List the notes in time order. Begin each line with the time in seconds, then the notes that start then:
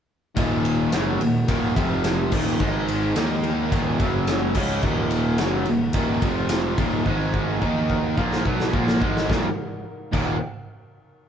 0.35 D#1 D#2 A#2 D#3 D#4 A#4 F#5, kick, ride
0.65 ride
0.92 F#1 F#2 C#3 F#3, snare, ride
1.20 D#1 D#2 A#2, ride
1.48 D#1 D#2 A#2 D#3, kick, ride
1.76 F1 F2 C3 F3, kick, ride
2.04 snare, ride
2.32 D#1 D#2 A#2 D#3 D#4, kick, crash
2.60 G#1 G#2 D#3 G#3, kick
2.88 ride
3.16 D#2 D#3 A#3 D#4 A#4 F#5, snare, ride
3.43 ride
3.72 D#1 D#2 A#2 D#3, kick, ride
3.99 F#1 F#2 C#3 F#3, kick, ride
4.27 snare, ride
4.54 C#2 C#3 G#3 C#4 D#4 A#4, kick, crash
4.83 D#1 D#2 A#2 D#3, kick
5.11 ride
5.38 F#1 F#2 C#3, snare, ride
5.43 F#3
5.66 D#1 D#2 A#2, ride
5.93 D#1 D#2, kick, ride
5.97 A#2 D#3
6.22 F1 F2 C3 F3, kick, ride
6.49 snare, ride
6.78 D#1 D#2 A#2 D#3, kick, ride
7.06 G#1 G#2 D#3 G#3, kick
7.34 kick
7.62 D#2 D#3 A#3 D#4 A#4 F#5, kick
7.90 kick
8.17 A#1 A#2 F3 A#3, kick
8.32 snare
8.45 B1 B2 F#3 B3, kick
8.60 snare
8.73 A#1 A#2 F3 A#3, kick
8.88 snare
9.00 G#1 G#2 D#3 G#3, kick
9.17 snare
9.27 D#1 D#2 A#2 D#3, kick, snare
10.13 D#1 D#2 A#2 D#3, kick, crash